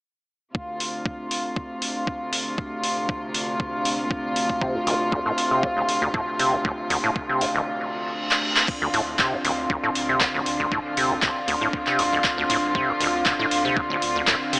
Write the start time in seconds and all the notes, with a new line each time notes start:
0.55 D2 C3 F4, kick
0.80 open hi-hat
1.06 kick
1.31 open hi-hat
1.56 kick
1.82 open hi-hat
2.07 kick
2.33 open hi-hat
2.58 kick
2.84 open hi-hat
3.09 kick
3.34 open hi-hat
3.60 kick
3.85 open hi-hat
4.11 kick
4.36 open hi-hat
4.50 kick
4.62 C3, kick
4.75 D2
4.87 D1, open hi-hat
5.12 D2, kick
5.26 A2
5.38 open hi-hat
5.51 C3
5.63 D2, kick
5.77 D1
5.89 open hi-hat
6.02 D2
6.14 A2, kick
6.39 C3, open hi-hat
6.53 D2
6.65 D1, kick
6.90 D2, open hi-hat
7.04 A2
7.16 kick
7.29 C3
7.41 D2, open hi-hat
7.55 D1
7.67 reverse cymbal
8.31 clap
8.56 clap
8.68 D3 C4 F4, kick, crash
8.82 D2
8.94 D2 A2, open hi-hat
9.19 C3, kick, clap
9.33 D2
9.45 D1 D2, open hi-hat
9.70 D2, kick
9.84 A2
9.95 D2, open hi-hat
10.09 C3
10.20 D2, kick, clap
10.34 D1
10.46 D2, open hi-hat
10.60 C2 D2
10.72 A2, kick
10.97 D2 C3, open hi-hat
11.11 D2
11.22 D1, kick, clap
11.48 D2, open hi-hat
11.61 A2
11.73 kick
11.87 C3, clap
11.99 D2, open hi-hat
12.12 D1
12.24 kick, clap
12.38 D2
12.49 D2 A2, open hi-hat
12.63 C2
12.75 C3, kick
12.89 D2
13.00 D1 D2, open hi-hat
13.26 D2, kick, clap
13.39 A2
13.51 D2, open hi-hat
13.65 C3
13.77 D2, kick
13.90 D1
14.02 D2, open hi-hat
14.16 D2
14.27 A2, kick, clap
14.53 D2 C3, open hi-hat